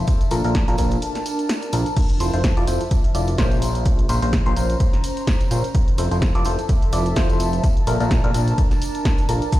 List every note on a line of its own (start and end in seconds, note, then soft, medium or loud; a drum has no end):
0.00 0.84 A4 medium
0.00 0.84 E5 medium
0.00 3.62 A5 medium
0.07 2.63 D4 medium
0.07 kick loud
0.07 closed hi-hat medium
0.07 tambourine soft
0.19 1.97 A#4 medium
0.19 closed hi-hat soft
0.19 tambourine soft
0.31 0.42 A#1 loud
0.31 0.43 A#2 medium
0.31 0.43 D4 medium
0.31 0.43 F4 medium
0.31 0.43 A4 medium
0.31 0.43 A#4 medium
0.31 open hi-hat medium
0.31 tambourine medium
0.44 0.65 A#1 medium
0.44 0.56 A#2 medium
0.44 0.56 D4 medium
0.44 0.56 F4 medium
0.44 0.56 A4 medium
0.44 0.56 A#4 loud
0.44 open hi-hat medium
0.44 tambourine soft
0.55 kick loud
0.55 snare loud
0.55 closed hi-hat medium
0.55 tambourine soft
0.68 0.76 A#1 medium
0.68 0.76 A#2 medium
0.68 0.76 D4 medium
0.68 0.76 F4 medium
0.68 0.76 A4 medium
0.68 0.76 A#4 loud
0.68 closed hi-hat soft
0.68 tambourine soft
0.78 0.98 A#1 medium
0.78 1.00 A#2 medium
0.78 1.00 D4 medium
0.78 1.00 F4 medium
0.78 1.00 A4 medium
0.78 1.00 A#4 medium
0.78 kick medium
0.78 open hi-hat medium
0.78 tambourine medium
0.91 closed hi-hat soft
0.91 tambourine soft
1.02 closed hi-hat medium
1.02 tambourine medium
1.15 snare soft
1.15 closed hi-hat soft
1.15 tambourine soft
1.26 open hi-hat medium
1.26 tambourine medium
1.39 closed hi-hat soft
1.39 tambourine soft
1.49 snare loud
1.49 closed hi-hat medium
1.49 tambourine soft
1.62 closed hi-hat soft
1.62 tambourine soft
1.73 1.85 A#1 loud
1.73 1.87 D4 medium
1.73 1.87 F4 medium
1.73 1.87 A4 medium
1.73 1.87 A#4 medium
1.73 open hi-hat medium
1.73 tambourine medium
1.86 closed hi-hat soft
1.86 tambourine soft
1.96 4.47 F4 medium
1.96 kick loud
1.96 closed hi-hat medium
1.96 crash medium
1.96 tambourine soft
2.08 4.48 E5 medium
2.08 closed hi-hat soft
2.20 2.31 F1 medium
2.20 2.32 F3 medium
2.20 2.31 E4 medium
2.20 2.32 F4 medium
2.20 2.32 A4 medium
2.20 2.32 C5 medium
2.20 open hi-hat loud
2.20 tambourine medium
2.33 2.54 F1 medium
2.33 2.45 F3 medium
2.33 2.45 E4 medium
2.33 2.45 F4 medium
2.33 2.45 A4 medium
2.33 2.45 C5 medium
2.33 closed hi-hat soft
2.33 tambourine soft
2.44 kick loud
2.44 snare loud
2.44 closed hi-hat medium
2.44 tambourine soft
2.57 2.65 F1 medium
2.57 2.65 F3 medium
2.57 2.65 E4 medium
2.57 2.65 F4 medium
2.57 2.65 A4 medium
2.57 2.65 D5 loud
2.57 closed hi-hat soft
2.67 2.79 F1 medium
2.67 2.82 F3 medium
2.67 2.82 E4 medium
2.67 2.82 F4 medium
2.67 2.82 A4 medium
2.67 2.82 C5 medium
2.67 open hi-hat loud
2.67 tambourine medium
2.81 closed hi-hat soft
2.81 tambourine soft
2.91 kick loud
2.91 closed hi-hat medium
2.91 tambourine soft
3.04 closed hi-hat soft
3.15 3.36 F1 medium
3.15 3.29 F3 medium
3.15 3.29 E4 medium
3.15 3.29 F4 medium
3.15 3.29 A4 medium
3.15 3.29 D5 medium
3.15 open hi-hat loud
3.15 tambourine medium
3.27 closed hi-hat soft
3.27 tambourine soft
3.38 4.07 A#1 medium
3.38 4.07 A#2 medium
3.38 4.07 C#4 medium
3.38 4.07 F4 medium
3.38 4.07 A#4 medium
3.38 4.07 C5 loud
3.38 kick loud
3.38 snare loud
3.38 closed hi-hat medium
3.38 tambourine soft
3.52 closed hi-hat soft
3.52 tambourine soft
3.62 5.75 C#4 medium
3.62 open hi-hat loud
3.62 tambourine medium
3.72 6.51 C5 medium
3.72 closed hi-hat soft
3.72 tambourine soft
3.80 5.75 A#5 medium
3.85 kick loud
3.85 closed hi-hat medium
3.85 tambourine medium
3.99 closed hi-hat soft
4.09 4.20 A#1 medium
4.09 4.20 A#2 medium
4.09 4.20 C#4 medium
4.09 4.20 F4 medium
4.09 4.20 A#4 medium
4.09 4.20 C5 medium
4.09 open hi-hat loud
4.09 tambourine medium
4.22 4.43 A#1 medium
4.22 4.34 A#2 medium
4.22 4.34 C#4 medium
4.22 4.34 F4 medium
4.22 4.34 A#4 medium
4.22 4.34 C5 loud
4.22 open hi-hat medium
4.22 tambourine soft
4.33 kick loud
4.33 snare loud
4.33 closed hi-hat medium
4.33 tambourine soft
4.46 4.54 A#1 loud
4.46 4.54 A#2 medium
4.46 4.54 C#4 medium
4.46 4.54 F4 medium
4.46 4.54 A#4 medium
4.46 4.54 C5 loud
4.46 closed hi-hat soft
4.56 4.76 A#1 loud
4.56 4.78 A#2 medium
4.56 4.78 C#4 medium
4.56 4.78 F4 medium
4.56 4.78 A#4 medium
4.56 4.78 C5 medium
4.56 open hi-hat loud
4.56 tambourine medium
4.69 closed hi-hat soft
4.69 tambourine soft
4.80 kick loud
4.80 closed hi-hat medium
4.80 tambourine soft
4.93 snare soft
4.93 closed hi-hat soft
5.04 open hi-hat loud
5.04 tambourine medium
5.17 closed hi-hat soft
5.17 tambourine soft
5.27 kick loud
5.27 snare loud
5.27 closed hi-hat medium
5.27 tambourine medium
5.41 closed hi-hat soft
5.41 tambourine soft
5.51 5.63 A#1 medium
5.51 5.65 C#4 medium
5.51 5.65 F4 medium
5.51 5.65 A#4 medium
5.51 5.65 C5 medium
5.51 open hi-hat loud
5.51 tambourine medium
5.64 closed hi-hat soft
5.64 tambourine soft
5.75 8.30 A4 medium
5.75 kick loud
5.75 closed hi-hat medium
5.75 tambourine medium
5.85 9.60 A5 medium
5.85 closed hi-hat soft
5.98 6.09 F1 medium
5.98 6.09 F3 medium
5.98 6.09 E4 medium
5.98 6.09 F4 medium
5.98 6.09 A4 medium
5.98 6.09 C5 medium
5.98 open hi-hat loud
5.98 tambourine medium
6.02 8.40 E5 medium
6.11 6.32 F1 medium
6.11 6.23 F3 medium
6.11 6.23 E4 medium
6.11 6.23 F4 medium
6.11 6.23 A4 medium
6.11 6.23 C5 medium
6.11 closed hi-hat soft
6.11 tambourine soft
6.22 kick loud
6.22 snare loud
6.22 closed hi-hat medium
6.22 tambourine medium
6.35 6.43 F1 medium
6.35 6.43 F3 medium
6.35 6.43 E4 medium
6.35 6.43 F4 medium
6.35 6.43 A4 medium
6.35 6.43 D5 loud
6.35 closed hi-hat soft
6.45 6.57 F1 loud
6.45 6.60 F3 medium
6.45 6.60 E4 medium
6.45 6.60 F4 medium
6.45 6.60 A4 medium
6.45 6.60 C5 medium
6.45 open hi-hat loud
6.45 tambourine medium
6.59 closed hi-hat soft
6.59 tambourine soft
6.69 kick loud
6.69 closed hi-hat medium
6.69 tambourine soft
6.82 closed hi-hat soft
6.92 7.14 F1 loud
6.92 7.07 F3 medium
6.92 7.07 E4 medium
6.92 7.07 F4 medium
6.92 7.07 A4 medium
6.92 7.07 D5 medium
6.92 open hi-hat loud
6.92 tambourine medium
7.06 closed hi-hat soft
7.06 tambourine soft
7.16 7.60 F1 medium
7.16 7.62 F3 medium
7.16 7.62 E4 medium
7.16 7.62 F4 medium
7.16 7.62 A4 medium
7.16 7.62 C5 loud
7.16 kick loud
7.16 snare loud
7.16 closed hi-hat medium
7.16 tambourine medium
7.30 closed hi-hat soft
7.30 tambourine soft
7.40 open hi-hat loud
7.40 tambourine medium
7.53 closed hi-hat soft
7.53 tambourine soft
7.64 9.60 D4 medium
7.64 kick loud
7.64 closed hi-hat medium
7.64 tambourine medium
7.76 9.53 A#4 medium
7.76 closed hi-hat soft
7.87 7.98 A#1 loud
7.87 7.98 A#2 medium
7.87 7.98 D4 medium
7.87 7.98 F4 medium
7.87 7.98 A4 medium
7.87 7.98 A#4 medium
7.87 open hi-hat loud
7.87 tambourine medium
8.00 8.21 A#1 medium
8.00 8.12 A#2 medium
8.00 8.12 D4 medium
8.00 8.12 F4 medium
8.00 8.12 A4 medium
8.00 8.12 A#4 medium
8.00 open hi-hat medium
8.00 tambourine soft
8.11 kick loud
8.11 snare loud
8.11 closed hi-hat medium
8.11 tambourine medium
8.24 8.32 A#1 loud
8.24 8.32 A#2 medium
8.24 8.32 D4 medium
8.24 8.32 F4 medium
8.24 8.32 A4 medium
8.24 8.32 A#4 loud
8.24 closed hi-hat soft
8.34 8.53 A#1 loud
8.34 8.56 A#2 medium
8.34 8.56 D4 medium
8.34 8.56 F4 medium
8.34 8.56 A4 medium
8.34 8.56 A#4 medium
8.34 open hi-hat loud
8.34 tambourine medium
8.48 closed hi-hat soft
8.48 tambourine soft
8.58 kick loud
8.58 closed hi-hat medium
8.58 tambourine medium
8.71 snare soft
8.71 closed hi-hat soft
8.71 tambourine soft
8.82 open hi-hat loud
8.82 tambourine medium
8.95 closed hi-hat soft
8.95 tambourine soft
9.05 kick loud
9.05 snare loud
9.05 closed hi-hat medium
9.05 tambourine medium
9.18 closed hi-hat soft
9.18 tambourine soft
9.29 9.41 A#1 medium
9.29 9.43 D4 medium
9.29 9.43 F4 medium
9.29 9.43 A4 medium
9.29 9.43 A#4 medium
9.29 open hi-hat loud
9.29 tambourine medium
9.42 closed hi-hat soft
9.42 tambourine soft
9.52 9.60 F4 medium
9.52 kick loud
9.52 closed hi-hat medium
9.52 tambourine soft
9.52 shaker soft